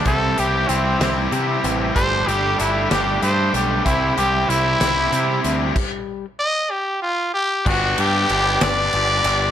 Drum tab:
CC |------|------|------|x-----|
RD |------|------|------|------|
HH |xxxxxx|xxxxxx|xxxxxx|------|
SD |---o--|---o--|---o--|------|
BD |o-----|o-----|o-----|o-----|

CC |x-----|
RD |-xxxxx|
HH |------|
SD |---o--|
BD |o-----|